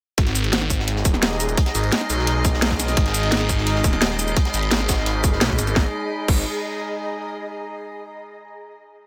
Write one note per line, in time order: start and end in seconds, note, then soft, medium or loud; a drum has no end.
0.18 1.04 G#1 loud
0.18 5.72 G#3 medium
0.18 5.72 D#4 medium
0.18 5.75 G#4 medium
0.18 5.72 D#5 medium
0.18 kick loud
0.18 closed hi-hat medium
0.26 snare soft
0.26 closed hi-hat soft
0.35 closed hi-hat medium
0.35 shaker medium
0.43 5.76 D#5 medium
0.43 closed hi-hat soft
0.53 snare loud
0.53 closed hi-hat loud
0.62 3.71 A#5 medium
0.62 snare medium
0.70 kick medium
0.70 closed hi-hat medium
0.70 shaker medium
0.79 snare medium
0.87 closed hi-hat medium
0.96 snare soft
1.05 1.56 D#1 loud
1.05 kick loud
1.05 closed hi-hat medium
1.05 shaker medium
1.14 snare medium
1.22 snare loud
1.22 closed hi-hat medium
1.22 closed hi-hat loud
1.32 snare soft
1.40 closed hi-hat medium
1.40 shaker medium
1.49 closed hi-hat soft
1.49 shaker soft
1.57 kick loud
1.57 closed hi-hat medium
1.57 closed hi-hat loud
1.66 snare medium
1.66 closed hi-hat soft
1.75 1.91 G#1 medium
1.75 closed hi-hat medium
1.75 shaker medium
1.84 closed hi-hat soft
1.92 snare loud
1.92 closed hi-hat medium
2.01 snare medium
2.10 2.96 B1 loud
2.10 closed hi-hat medium
2.10 open hi-hat medium
2.10 shaker medium
2.19 snare soft
2.27 closed hi-hat medium
2.44 kick loud
2.44 closed hi-hat medium
2.44 shaker medium
2.54 snare soft
2.62 snare loud
2.62 closed hi-hat medium
2.70 kick medium
2.70 snare soft
2.70 closed hi-hat medium
2.80 snare soft
2.80 closed hi-hat medium
2.80 shaker medium
2.88 snare soft
2.88 closed hi-hat medium
2.88 closed hi-hat soft
2.88 shaker soft
2.97 3.83 G#1 loud
2.97 kick loud
2.97 closed hi-hat medium
3.06 snare medium
3.06 closed hi-hat soft
3.14 closed hi-hat medium
3.14 shaker medium
3.23 closed hi-hat soft
3.31 snare loud
3.31 closed hi-hat medium
3.41 snare medium
3.49 kick medium
3.49 closed hi-hat medium
3.49 shaker medium
3.58 5.76 B5 medium
3.58 snare soft
3.67 closed hi-hat medium
3.67 closed hi-hat loud
3.75 snare soft
3.84 4.35 D#1 loud
3.84 kick loud
3.84 closed hi-hat medium
3.84 shaker medium
3.93 snare medium
4.02 snare loud
4.02 closed hi-hat medium
4.11 snare soft
4.19 closed hi-hat medium
4.19 shaker medium
4.28 closed hi-hat soft
4.28 shaker soft
4.37 kick loud
4.37 closed hi-hat medium
4.45 snare medium
4.45 closed hi-hat soft
4.54 4.70 G#1 loud
4.54 closed hi-hat medium
4.54 shaker medium
4.63 closed hi-hat soft
4.71 4.87 G#1 loud
4.71 snare loud
4.71 closed hi-hat medium
4.80 snare soft
4.89 5.40 G#1 loud
4.89 kick medium
4.89 snare loud
4.89 closed hi-hat medium
4.89 open hi-hat medium
4.89 shaker medium
4.97 snare soft
5.06 closed hi-hat medium
5.24 kick loud
5.24 closed hi-hat medium
5.24 shaker medium
5.32 snare soft
5.41 5.57 B1 loud
5.41 snare loud
5.41 closed hi-hat medium
5.50 kick medium
5.50 snare soft
5.59 5.75 G#1 loud
5.59 snare soft
5.59 closed hi-hat medium
5.59 shaker medium
5.67 snare soft
5.67 closed hi-hat soft
5.67 shaker soft
5.76 5.86 G#1 loud
5.76 7.12 G#4 medium
5.76 kick loud
5.76 snare medium
5.81 7.12 D#5 medium
5.87 7.12 A#5 medium
6.28 6.45 G#1 loud
6.28 kick loud
6.28 crash medium